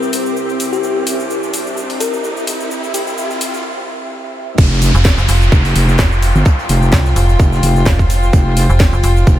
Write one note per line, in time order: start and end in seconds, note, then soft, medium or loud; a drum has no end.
0.00 3.65 C4 medium
0.00 4.54 C4 medium
0.00 3.65 G4 medium
0.00 4.54 G4 medium
0.00 3.65 C5 medium
0.00 4.54 E5 medium
0.00 riser medium
0.00 cabasa soft
0.13 open hi-hat loud
0.13 cabasa medium
0.26 cabasa soft
0.36 cabasa soft
0.49 cabasa soft
0.60 open hi-hat loud
0.60 cabasa medium
0.73 1.07 G4 medium
0.73 cabasa soft
0.83 cabasa soft
1.07 open hi-hat loud
1.07 cabasa medium
1.20 cabasa soft
1.30 cabasa soft
1.43 cabasa soft
1.54 open hi-hat loud
1.54 cabasa medium
1.67 cabasa soft
1.77 cabasa soft
1.90 open hi-hat medium
1.90 cabasa soft
2.00 2.20 A#4 medium
2.00 open hi-hat loud
2.00 cabasa medium
2.13 cabasa soft
2.24 cabasa soft
2.37 cabasa soft
2.47 open hi-hat loud
2.47 cabasa medium
2.60 cabasa soft
2.71 cabasa soft
2.84 cabasa soft
2.94 3.02 G4 medium
2.94 open hi-hat loud
2.94 cabasa medium
3.07 3.14 G4 medium
3.07 cabasa soft
3.18 cabasa medium
3.31 cabasa soft
3.41 open hi-hat loud
3.41 cabasa medium
3.54 cabasa soft
4.58 4.93 F1 loud
4.58 9.39 G#3 medium
4.58 9.39 F4 loud
4.58 8.30 G4 medium
4.58 9.39 F5 medium
4.58 kick loud
4.58 closed hi-hat medium
4.58 crash loud
4.58 downlifter medium
4.58 cabasa soft
4.82 9.39 G5 medium
4.82 closed hi-hat medium
4.82 open hi-hat loud
4.82 cabasa medium
4.95 5.16 F1 medium
4.95 cabasa soft
5.05 9.39 C5 loud
5.05 kick loud
5.05 snare loud
5.05 open hi-hat medium
5.05 cabasa soft
5.18 5.27 F1 medium
5.18 closed hi-hat soft
5.18 cabasa soft
5.28 5.50 F1 medium
5.28 closed hi-hat medium
5.28 open hi-hat loud
5.28 cabasa medium
5.42 cabasa soft
5.52 5.74 F1 medium
5.52 kick loud
5.52 closed hi-hat medium
5.52 cabasa soft
5.65 snare medium
5.65 open hi-hat medium
5.65 cabasa soft
5.76 5.97 F1 loud
5.76 closed hi-hat medium
5.76 open hi-hat loud
5.76 cabasa medium
5.88 snare soft
5.88 cabasa soft
5.99 6.33 F1 loud
5.99 kick loud
5.99 snare loud
5.99 closed hi-hat medium
5.99 cabasa soft
6.12 cabasa soft
6.22 closed hi-hat medium
6.22 open hi-hat loud
6.22 cabasa medium
6.35 6.44 G1 loud
6.35 cabasa soft
6.45 kick loud
6.45 closed hi-hat medium
6.45 cabasa soft
6.59 closed hi-hat soft
6.69 6.91 F1 loud
6.69 closed hi-hat medium
6.69 open hi-hat loud
6.69 cabasa medium
6.82 cabasa soft
6.93 7.14 C2 medium
6.93 kick loud
6.93 snare loud
6.93 closed hi-hat medium
6.93 cabasa soft
7.05 snare medium
7.05 cabasa soft
7.16 7.38 F1 loud
7.16 closed hi-hat medium
7.16 open hi-hat loud
7.16 cabasa medium
7.29 closed hi-hat soft
7.29 cabasa soft
7.39 7.61 F1 loud
7.39 kick loud
7.39 closed hi-hat medium
7.39 cabasa soft
7.53 snare soft
7.53 cabasa soft
7.63 7.85 F1 loud
7.63 closed hi-hat medium
7.63 open hi-hat loud
7.63 cabasa medium
7.76 cabasa soft
7.86 8.32 F1 loud
7.86 kick loud
7.86 snare loud
7.86 closed hi-hat medium
7.86 cabasa soft
7.99 kick medium
7.99 cabasa soft
8.09 snare soft
8.09 closed hi-hat medium
8.09 open hi-hat loud
8.09 cabasa medium
8.23 cabasa soft
8.33 8.68 F1 loud
8.33 9.39 G#4 medium
8.33 kick loud
8.33 closed hi-hat medium
8.33 cabasa soft
8.57 closed hi-hat medium
8.57 open hi-hat loud
8.57 cabasa medium
8.70 8.91 F1 medium
8.70 cabasa soft
8.80 kick loud
8.80 snare loud
8.80 open hi-hat medium
8.80 cabasa soft
8.93 9.02 F1 medium
8.93 closed hi-hat soft
8.93 cabasa soft
9.03 9.25 F1 loud
9.03 closed hi-hat medium
9.03 open hi-hat loud
9.03 cabasa medium
9.17 cabasa soft
9.27 9.39 F1 medium
9.27 kick loud
9.27 closed hi-hat medium
9.27 cabasa soft